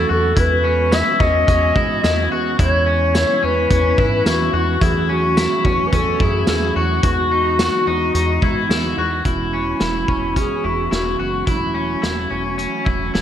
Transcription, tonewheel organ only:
Already playing: E3 F#3 A3 C#4 F#4
0.37 G#3 B3 C#4
2.58 E4
4.81 F#3 A3 C#4 F#4
7.03 E3 G#3 B3 D#4
9.25 E3 G#3 B3 C#4 F#4
11.48 F#3 A3 F#4

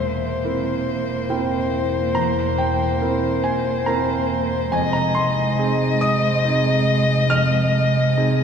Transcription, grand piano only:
Already playing: E2 E5
0.44 C4 E4 A#4
1.29 C4 E4 A#4 G5
2.15 E2 A#5
2.58 G5
3.01 C4 E4 A#4
3.44 G#5
3.86 C4 E4 A#4 A#5
4.72 F2 G#5
4.93 A#5
5.14 C6
5.59 C4 D#4 G#4
6.01 D#6
6.45 C4 D#4 G#4
7.30 F2 F6
8.17 C4 D#4 G#4

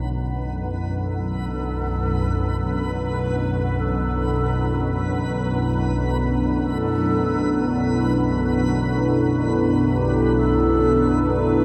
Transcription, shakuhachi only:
0.99 A4
2.85 B4
3.80 A4
4.75 B4
4.80 A4
4.88 B4
6.60 A4
9.91 G4
10.37 A4
11.30 B4

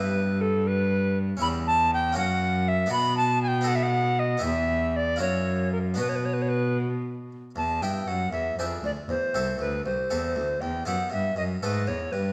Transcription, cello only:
Already playing: G2
1.42 E2
2.17 F#2
2.92 B2
4.44 E2
5.20 F#2
5.99 B2
7.56 E2
7.82 G2
8.07 F#2
8.32 E2
8.57 F2
8.83 D2
9.09 E2
9.35 C2
9.60 D2
9.86 C2
10.11 E2
10.36 D2
10.61 E2
10.86 F#2
11.13 G2
11.37 F#2
11.63 G#2
11.89 E2
12.14 G2

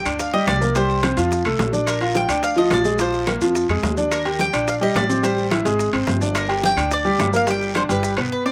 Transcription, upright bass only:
0.05 D2
0.47 C2
1.17 F2
1.45 C2
1.59 A#1
2.28 D2
2.70 A#1
3.41 F2
3.69 F2
3.83 D#2
4.53 A#1
4.95 A1
5.65 G#1
5.93 G#1
6.07 G1
6.76 D2
7.19 G1
7.90 G1
8.17 B1

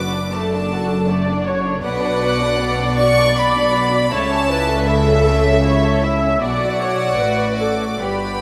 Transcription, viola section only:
Already playing: B4
0.34 A4
1.08 D5
1.46 C#5
1.83 B4
2.60 D5
4.13 C#5
4.50 B4
4.87 A4
5.64 C#5
6.03 E5
6.41 D5
6.81 C#5
7.20 B4
7.60 A4
8.00 B4

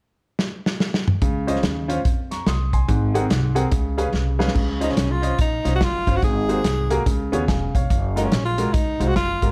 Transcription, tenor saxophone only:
4.83 D#4
4.91 C#4
5.11 F4
5.41 D#4
5.75 F#4
5.83 F4
6.16 F#4
6.24 G#4
8.17 D#4
8.24 C#4
8.45 F4
8.74 D#4
9.08 F#4
9.16 F4

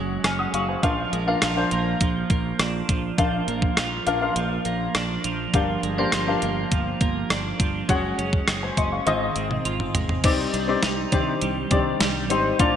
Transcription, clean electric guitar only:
Already playing: F#3 G#3
0.25 C#4
0.54 F#3
0.83 F3
1.13 G#3
1.28 A#3
1.42 F3
1.72 A#3
2.01 F3
2.31 A#3
2.60 D4
2.89 F3
3.19 F3
3.48 A#3
3.77 F3
4.07 A#3
4.36 F3
4.66 A#3
4.95 D4
5.25 F3
5.54 F3
5.84 G#3
5.98 A#3
6.13 F3
6.43 A#3
6.72 F3
7.01 A#3
7.30 D4
7.60 F3
7.89 G#3
8.19 C#4
8.48 G#3
8.78 C#4
9.07 D#3
9.36 C4
9.65 F4
9.95 G#3
10.24 G3
10.54 D4
10.83 D#4
11.13 D4
11.42 G3
11.71 D4
12.01 G3
12.31 D#4
12.60 F3

